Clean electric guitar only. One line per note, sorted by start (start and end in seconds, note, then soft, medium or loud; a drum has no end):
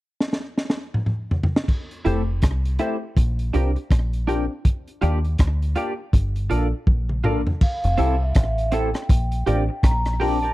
2.05 2.21 E4 medium
2.05 2.22 A4 medium
2.05 2.22 C5 medium
2.79 2.96 E4 medium
2.79 2.96 A4 medium
2.79 2.97 C5 medium
3.54 3.70 D4 medium
3.54 3.70 G4 medium
3.54 3.71 A#4 medium
3.76 muted clean electric guitar stroke soft
4.27 4.44 D4 medium
4.27 4.44 G4 medium
4.27 4.45 A#4 medium
5.01 5.18 F4 medium
5.01 5.18 G4 medium
5.01 5.19 D5 medium
5.76 5.92 F4 medium
5.76 5.93 G4 medium
5.76 5.93 D5 medium
6.50 6.66 F4 medium
6.50 6.67 A#4 medium
6.50 6.67 D5 medium
7.24 7.40 F4 medium
7.24 7.41 A#4 medium
7.24 7.41 D5 medium
7.98 8.14 C4 loud
7.98 8.15 E4 loud
7.98 8.15 A4 loud
8.72 8.89 C4 medium
8.72 8.89 E4 medium
8.72 8.89 A4 medium
9.47 9.63 G4 medium
9.47 9.63 A#4 medium
9.47 9.64 D5 medium
9.69 muted clean electric guitar stroke soft
10.20 10.37 G4 medium
10.20 10.37 A#4 medium
10.20 10.38 D5 loud
10.42 10.52 G4 medium
10.42 10.52 A#4 medium
10.42 10.51 D5 medium